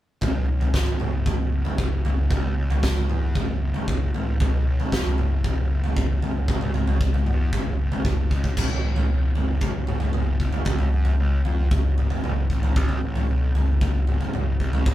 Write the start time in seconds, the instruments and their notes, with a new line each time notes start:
0.21 picked electric bass B1, kick, floor tom
0.48 picked electric bass B1
0.61 floor tom
0.74 picked electric bass G#1, kick, snare
0.87 floor tom
1.00 picked electric bass F#1, mid tom
1.26 picked electric bass E1, kick, floor tom
1.52 picked electric bass F#1
1.65 floor tom
1.78 picked electric bass F#1, kick
2.05 picked electric bass F#1, floor tom
2.31 picked electric bass C#2, kick, floor tom
2.58 picked electric bass C#2
2.70 floor tom
2.83 picked electric bass C#2, kick, snare
2.96 floor tom
3.09 picked electric bass E2, mid tom
3.35 picked electric bass F#1, kick, floor tom
3.62 picked electric bass F#1
3.74 floor tom
3.88 picked electric bass F#1, kick
4.14 picked electric bass A1, floor tom
4.40 picked electric bass B1, kick, floor tom
4.66 picked electric bass B1
4.80 floor tom
4.92 picked electric bass F1, kick, snare
5.06 floor tom
5.18 picked electric bass F#1, mid tom
5.44 picked electric bass E1, kick, floor tom
5.70 picked electric bass F#1
5.84 floor tom
5.97 picked electric bass F#1, kick
6.22 picked electric bass F#1, floor tom
6.48 picked electric bass C#2, kick, floor tom
6.61 mid tom
6.74 picked electric bass C#2, floor tom
6.87 floor tom
7.01 picked electric bass C#2, kick
7.14 floor tom
7.26 picked electric bass E2, mid tom
7.53 picked electric bass F#1, kick, floor tom
7.77 picked electric bass F#1
7.92 floor tom
8.04 picked electric bass F#1, kick, high tom
8.31 picked electric bass C#2, kick
8.44 kick
8.57 picked electric bass B1, kick, floor tom, crash
8.70 floor tom
8.84 picked electric bass A1
8.96 floor tom
9.10 picked electric bass E1
9.35 picked electric bass F#1, floor tom
9.61 picked electric bass F#1, kick, floor tom
9.87 picked electric bass F#1, mid tom
10.00 floor tom
10.13 picked electric bass F#1, mid tom
10.40 picked electric bass F#1, kick
10.52 floor tom
10.65 picked electric bass C#2, kick, floor tom
10.78 floor tom
10.93 picked electric bass F#2
11.05 floor tom
11.20 picked electric bass C#2
11.45 picked electric bass F2, floor tom
11.71 picked electric bass F#1, kick, floor tom
11.98 picked electric bass F#1, mid tom
12.10 floor tom
12.24 picked electric bass F#1, mid tom
12.50 picked electric bass A1, kick
12.63 floor tom
12.76 picked electric bass B1, kick, floor tom
12.89 floor tom
13.04 picked electric bass A1
13.15 floor tom
13.30 picked electric bass B1
13.55 picked electric bass F#1, floor tom
13.81 picked electric bass F#1, kick, floor tom
14.07 picked electric bass F#1, mid tom
14.21 floor tom
14.33 picked electric bass F#1, mid tom
14.60 picked electric bass C2, kick
14.73 floor tom
14.86 picked electric bass C#2, kick, floor tom